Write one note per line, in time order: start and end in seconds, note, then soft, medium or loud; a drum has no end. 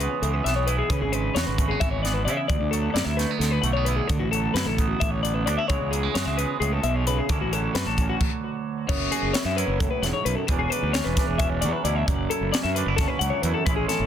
0.00 0.23 C#3 medium
0.00 0.23 E3 medium
0.00 0.88 G#3 soft
0.00 0.46 B3 medium
0.00 0.68 F#4 medium
0.00 0.22 B4 medium
0.00 closed hi-hat medium
0.22 0.40 C#2 medium
0.22 1.42 E3 medium
0.22 0.34 A4 medium
0.22 closed hi-hat medium
0.34 0.45 B4 medium
0.44 0.81 B1 medium
0.44 0.94 B3 medium
0.44 0.56 E5 medium
0.44 snare soft
0.44 closed hi-hat medium
0.56 0.67 C#5 medium
0.67 1.38 E4 medium
0.67 0.78 B4 medium
0.67 closed hi-hat medium
0.78 0.90 G#4 medium
0.90 0.99 C#3 medium
0.90 1.81 C#3 medium
0.90 1.01 B4 medium
0.90 kick medium
0.90 closed hi-hat medium
1.01 1.28 G#1 medium
1.01 1.12 G#4 medium
1.12 2.47 G#3 soft
1.12 1.35 B4 medium
1.12 closed hi-hat medium
1.35 1.44 E2 medium
1.35 2.28 F#4 medium
1.35 1.47 C#5 medium
1.35 snare medium
1.35 closed hi-hat medium
1.47 1.74 G#1 medium
1.47 1.69 B4 medium
1.58 1.71 A3 medium
1.58 kick medium
1.58 closed hi-hat medium
1.68 2.04 B3 soft
1.68 1.80 G#4 medium
1.80 2.27 G#1 medium
1.80 2.53 E3 medium
1.80 1.91 E5 medium
1.80 kick medium
1.80 closed hi-hat medium
1.91 2.02 C#5 medium
2.03 3.18 B3 medium
2.03 2.14 D5 medium
2.03 snare soft
2.03 closed hi-hat medium
2.14 2.25 B4 medium
2.25 2.35 C#3 medium
2.25 2.53 E4 medium
2.25 2.37 D5 medium
2.25 closed hi-hat medium
2.37 2.48 E5 medium
2.48 4.09 D2 medium
2.48 2.59 D2 medium
2.48 2.72 D5 medium
2.48 kick medium
2.48 closed hi-hat medium
2.60 2.87 D2 medium
2.71 4.32 F#3 medium
2.71 2.94 A4 medium
2.71 closed hi-hat medium
2.94 3.04 F#2 medium
2.94 3.87 E4 medium
2.94 3.05 D5 medium
2.94 snare medium
2.94 closed hi-hat medium
3.05 3.24 D2 medium
3.05 3.17 E5 medium
3.17 3.31 A3 soft
3.17 3.39 B4 medium
3.17 snare soft
3.17 closed hi-hat soft
3.31 3.63 B3 soft
3.39 3.58 D2 medium
3.39 5.01 D3 medium
3.39 3.51 A4 medium
3.39 snare soft
3.39 closed hi-hat medium
3.51 3.63 B4 medium
3.62 3.99 B1 medium
3.62 3.76 A3 medium
3.62 3.73 F#5 medium
3.62 closed hi-hat soft
3.73 4.10 B3 soft
3.73 3.85 C#5 medium
3.85 4.13 E4 medium
3.85 3.96 B4 medium
3.85 closed hi-hat soft
3.96 4.08 G#4 medium
4.08 5.69 D2 medium
4.08 4.18 D3 medium
4.08 4.19 A4 medium
4.08 kick medium
4.08 closed hi-hat medium
4.20 4.47 A1 medium
4.20 4.31 F#4 medium
4.31 5.70 F#3 soft
4.31 4.54 A4 medium
4.31 closed hi-hat medium
4.54 4.64 F#2 medium
4.54 5.47 E4 soft
4.54 4.66 B4 medium
4.54 snare medium
4.54 closed hi-hat medium
4.66 4.93 A1 medium
4.66 4.88 A4 medium
4.78 5.23 B3 medium
4.78 kick medium
4.78 closed hi-hat medium
4.88 5.00 F#4 medium
5.00 5.47 A1 medium
5.00 5.70 D3 medium
5.00 5.11 E5 medium
5.00 kick medium
5.00 closed hi-hat medium
5.11 5.22 C#5 medium
5.23 5.67 B3 soft
5.23 5.34 D5 medium
5.23 closed hi-hat medium
5.34 5.45 B4 medium
5.46 5.56 D2 medium
5.46 5.58 D4 medium
5.46 5.57 D5 medium
5.46 closed hi-hat medium
5.58 5.69 E4 soft
5.58 5.68 E5 medium
5.68 5.78 C#2 medium
5.68 6.60 C#3 medium
5.68 7.27 E3 medium
5.68 5.90 G#3 medium
5.68 6.39 B3 medium
5.68 6.16 E4 medium
5.68 5.91 C#5 medium
5.68 kick medium
5.68 closed hi-hat medium
5.81 6.08 C#2 medium
5.91 6.03 F#3 medium
5.91 6.14 G#4 medium
5.91 closed hi-hat medium
6.03 7.29 G#3 soft
6.14 6.24 F#2 medium
6.14 7.27 F#4 medium
6.14 6.26 C#5 medium
6.14 snare medium
6.14 closed hi-hat medium
6.26 6.44 C#2 medium
6.26 6.37 E5 medium
6.37 7.27 B3 medium
6.37 6.60 B4 medium
6.37 closed hi-hat medium
6.60 6.78 C#2 medium
6.60 6.83 A2 medium
6.60 6.72 G#4 medium
6.60 closed hi-hat medium
6.72 6.83 A4 medium
6.83 7.19 B1 medium
6.83 7.06 B2 medium
6.83 6.96 E5 medium
6.83 closed hi-hat soft
6.96 7.06 C#5 medium
7.07 7.29 C#3 medium
7.07 7.18 B4 medium
7.07 closed hi-hat medium
7.18 7.30 G#4 medium
7.29 8.89 D2 medium
7.29 7.38 D2 medium
7.29 9.57 D3 medium
7.29 7.52 F#3 medium
7.29 7.98 C#4 soft
7.29 7.76 E4 medium
7.29 7.41 A4 medium
7.29 kick medium
7.29 closed hi-hat medium
7.40 7.67 A1 medium
7.40 7.53 F#4 medium
7.53 9.56 F#3 medium
7.53 7.75 A4 medium
7.53 closed hi-hat soft
7.75 7.84 F#2 medium
7.75 8.18 F#4 medium
7.75 7.86 B4 medium
7.75 snare medium
7.75 closed hi-hat medium
7.86 8.13 A1 medium
7.86 8.09 A4 medium
7.98 8.19 C#4 soft
7.98 kick medium
7.98 closed hi-hat medium
8.09 8.20 F#4 medium
8.20 kick medium
8.20 crash medium
8.89 9.07 F#1 medium
8.89 10.03 F#2 medium
8.89 10.46 B3 medium
8.89 9.11 C#5 medium
8.89 kick loud
8.89 crash loud
9.12 9.36 F#4 medium
9.12 9.34 G#4 medium
9.12 closed hi-hat medium
9.22 9.31 F#1 medium
9.34 9.58 E4 medium
9.34 9.45 C#5 medium
9.34 snare loud
9.34 closed hi-hat medium
9.45 9.63 F#2 medium
9.45 9.57 E5 medium
9.56 10.49 F#3 medium
9.56 10.51 E4 medium
9.56 9.80 B4 medium
9.56 closed hi-hat medium
9.68 9.86 F#1 medium
9.80 10.02 A2 medium
9.80 9.90 A4 medium
9.80 kick loud
9.80 closed hi-hat medium
9.91 10.02 B4 medium
10.02 10.11 E1 medium
10.02 10.26 G#2 medium
10.02 10.13 F#5 medium
10.02 snare soft
10.02 closed hi-hat medium
10.13 10.25 C#5 medium
10.25 10.34 B1 medium
10.25 10.48 F#2 medium
10.25 10.36 B4 medium
10.25 closed hi-hat medium
10.36 10.47 A4 medium
10.47 10.67 E1 medium
10.47 12.05 E2 medium
10.47 11.17 E3 medium
10.47 11.63 F#3 medium
10.47 10.94 C#4 medium
10.47 10.58 B4 medium
10.47 kick loud
10.47 closed hi-hat medium
10.51 10.71 D4 medium
10.59 10.70 G#4 medium
10.70 11.19 D4 medium
10.70 10.93 B4 medium
10.70 closed hi-hat medium
10.82 11.00 D2 medium
10.93 11.40 C#4 medium
10.93 11.05 C#5 medium
10.93 snare loud
10.93 closed hi-hat medium
11.04 11.14 E1 medium
11.04 11.27 B4 medium
11.17 12.11 E3 medium
11.17 11.86 D4 medium
11.17 kick medium
11.17 snare soft
11.17 closed hi-hat medium
11.27 11.64 E1 medium
11.27 11.39 G#4 medium
11.38 12.53 C#4 medium
11.38 11.50 E5 medium
11.38 kick medium
11.38 closed hi-hat medium
11.50 11.61 C#5 medium
11.61 11.71 E2 medium
11.61 12.07 F#3 medium
11.61 11.73 D5 medium
11.61 closed hi-hat medium
11.73 11.84 B4 medium
11.84 12.02 D2 medium
11.84 12.05 B2 medium
11.84 12.11 E4 medium
11.84 11.96 D5 medium
11.84 closed hi-hat medium
11.96 12.06 E5 medium
12.06 12.26 F#1 medium
12.06 13.43 F#2 medium
12.06 13.21 F#3 medium
12.06 12.29 D5 medium
12.06 kick loud
12.06 closed hi-hat medium
12.30 12.77 E4 medium
12.30 12.53 A4 medium
12.30 closed hi-hat medium
12.41 12.50 F#1 medium
12.52 13.00 C#4 medium
12.52 12.63 D5 medium
12.52 snare loud
12.52 closed hi-hat loud
12.63 12.82 F#2 medium
12.63 12.75 E5 medium
12.75 13.67 D3 medium
12.75 12.88 D4 medium
12.75 12.96 B4 medium
12.75 closed hi-hat medium
12.86 13.04 F#1 medium
12.86 13.44 E4 soft
12.96 13.08 A4 medium
12.96 kick medium
12.96 snare soft
12.96 closed hi-hat medium
13.00 13.69 C#4 medium
13.08 13.20 B4 medium
13.19 13.30 C#2 medium
13.19 13.67 F#3 medium
13.19 13.31 F#5 medium
13.19 closed hi-hat medium
13.30 13.42 C#5 medium
13.42 13.52 E2 medium
13.42 13.64 F#2 medium
13.42 13.70 E4 medium
13.42 13.54 B4 medium
13.42 closed hi-hat medium
13.54 13.65 A4 medium
13.66 13.85 A1 medium
13.66 14.06 A2 medium
13.66 14.06 E3 medium
13.66 14.06 G#3 medium
13.66 14.06 C#4 medium
13.66 13.76 B4 medium
13.66 kick loud
13.66 closed hi-hat medium
13.70 13.91 E4 medium
13.76 13.88 G#4 medium
13.88 14.06 E4 medium
13.88 14.06 A4 medium
13.88 snare soft
13.88 closed hi-hat medium
14.00 14.06 G#1 medium